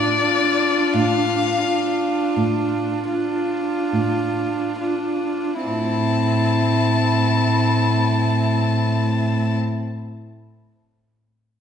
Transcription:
Already playing: cello A2, viola D4, violin F4 D5
0.25 viola D4, violin F4
0.94 cello A2, violin F5
1.64 viola D4, violin F4
2.37 cello A2
3.12 viola D4, violin F4
3.93 cello A2
4.81 viola D4, violin F4
5.65 cello A2, viola C4, violin E4 A5

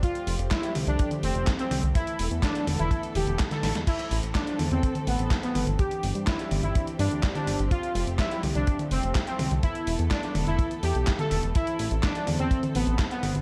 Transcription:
Already playing: string section C4
0.03 string section F3 A3 G4, analog polysynth F4, kick, closed hi-hat
0.15 closed hi-hat
0.27 analog synth bass F1, open hi-hat
0.39 analog synth bass F1, closed hi-hat
0.51 analog polysynth E4, kick, snare, clap, closed hi-hat
0.63 closed hi-hat
0.75 analog synth bass C2, open hi-hat, high tom
0.87 analog synth bass C2, analog polysynth D4, closed hi-hat
0.99 kick, closed hi-hat
1.11 closed hi-hat, high tom
1.23 analog synth bass F1, analog polysynth C4, open hi-hat
1.35 analog synth bass F1, closed hi-hat
1.47 kick, snare, clap, closed hi-hat
1.59 analog polysynth C4, closed hi-hat
1.71 analog synth bass C2, open hi-hat, high tom
1.83 analog synth bass C2, closed hi-hat
1.95 string section E3 A3 B3 A4, analog polysynth E4, kick, closed hi-hat
2.07 closed hi-hat
2.19 analog synth bass E1, open hi-hat
2.31 analog synth bass E2, closed hi-hat
2.43 analog polysynth D4, kick, snare, clap, closed hi-hat
2.55 closed hi-hat
2.67 analog synth bass E1, open hi-hat, high tom
2.79 analog synth bass E1, analog polysynth E4, closed hi-hat
2.91 kick, closed hi-hat
3.03 closed hi-hat
3.15 analog synth bass E1, analog polysynth G4, open hi-hat, high tom
3.27 analog synth bass E1, closed hi-hat
3.39 kick, snare, clap, closed hi-hat
3.51 analog polysynth A4, snare, closed hi-hat, high tom
3.63 analog synth bass A1, snare, open hi-hat
3.75 analog synth bass E2, snare, closed hi-hat
3.87 string section E3 A3 C4 A4, analog polysynth E4, kick, closed hi-hat, crash
3.99 closed hi-hat
4.11 analog synth bass A1, open hi-hat
4.23 analog synth bass A1, closed hi-hat
4.35 analog polysynth D4, kick, snare, clap, closed hi-hat
4.47 closed hi-hat
4.59 analog synth bass E2, open hi-hat, high tom
4.71 analog synth bass E2, analog polysynth C4, closed hi-hat
4.83 kick, closed hi-hat
4.95 closed hi-hat, high tom
5.07 analog synth bass A1, analog polysynth B3, open hi-hat
5.19 analog synth bass A1, closed hi-hat
5.31 kick, snare, clap, closed hi-hat
5.43 analog polysynth B3, closed hi-hat
5.55 analog synth bass G1, open hi-hat, high tom
5.67 analog synth bass G1, closed hi-hat
5.79 string section E3 C4 D4 G4, analog polysynth G4, kick, closed hi-hat
5.91 closed hi-hat
6.03 analog synth bass G1, open hi-hat
6.15 analog synth bass G2, closed hi-hat
6.27 analog polysynth E4, kick, snare, clap, closed hi-hat
6.39 closed hi-hat
6.51 analog synth bass G1, open hi-hat, high tom
6.63 analog synth bass G1, analog polysynth E4, closed hi-hat
6.75 kick, closed hi-hat
6.87 closed hi-hat
6.99 analog synth bass G2, analog polysynth D4, open hi-hat
7.11 analog synth bass D2, closed hi-hat
7.23 kick, snare, clap, closed hi-hat
7.35 analog polysynth D4, closed hi-hat, high tom
7.47 analog synth bass G1, open hi-hat
7.59 analog synth bass G1, closed hi-hat
7.71 string section F3 A3, analog polysynth F4, kick, closed hi-hat
7.83 closed hi-hat
7.95 analog synth bass F1, open hi-hat
8.07 analog synth bass F1, closed hi-hat
8.19 analog polysynth E4, kick, snare, clap, closed hi-hat
8.31 closed hi-hat
8.43 analog synth bass C2, open hi-hat, high tom
8.55 analog synth bass C2, analog polysynth D4, closed hi-hat
8.67 kick, closed hi-hat
8.79 closed hi-hat, high tom
8.91 analog synth bass F1, analog polysynth C4, open hi-hat
9.03 analog synth bass F1, closed hi-hat
9.15 kick, snare, clap, closed hi-hat
9.27 analog polysynth C4, closed hi-hat
9.39 analog synth bass C2, open hi-hat, high tom
9.51 analog synth bass C2, closed hi-hat
9.63 string section E3 B3 A4, analog polysynth E4, kick, closed hi-hat
9.75 closed hi-hat
9.87 analog synth bass E1, open hi-hat
9.99 analog synth bass E2, closed hi-hat
10.11 analog polysynth D4, kick, snare, clap, closed hi-hat
10.23 closed hi-hat
10.35 analog synth bass E1, open hi-hat, high tom
10.47 analog synth bass E1, analog polysynth E4, closed hi-hat
10.59 kick, closed hi-hat
10.71 closed hi-hat
10.83 analog synth bass E2, analog polysynth G4, open hi-hat
10.95 analog synth bass B1, closed hi-hat
11.07 kick, snare, clap, closed hi-hat
11.19 analog polysynth A4, closed hi-hat, high tom
11.31 analog synth bass E1, open hi-hat
11.43 analog synth bass E1, closed hi-hat
11.55 string section C4 A4, analog polysynth E4, kick, closed hi-hat
11.67 closed hi-hat
11.79 analog synth bass A1, open hi-hat
11.91 analog synth bass A1, closed hi-hat
12.03 analog polysynth D4, kick, snare, clap, closed hi-hat
12.15 closed hi-hat
12.27 analog synth bass E2, open hi-hat, high tom
12.39 analog synth bass E2, analog polysynth C4, closed hi-hat
12.51 kick, closed hi-hat
12.63 closed hi-hat, high tom
12.75 analog synth bass A1, analog polysynth B3, open hi-hat
12.87 analog synth bass A1, closed hi-hat
12.99 kick, snare, clap, closed hi-hat
13.11 analog polysynth B3, closed hi-hat
13.23 analog synth bass G1, open hi-hat, high tom
13.35 analog synth bass G1, closed hi-hat

